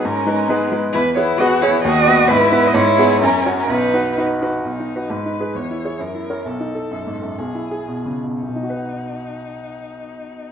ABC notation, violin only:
X:1
M:2/4
L:1/16
Q:1/4=130
K:B
V:1 name="Violin"
C4 B,2 z2 | E2 E2 F2 E2 | F4 E4 | E4 C3 C |
D4 z4 | D4 B4 | c4 A4 | =A8 |
G6 z2 | D8- | D8 |]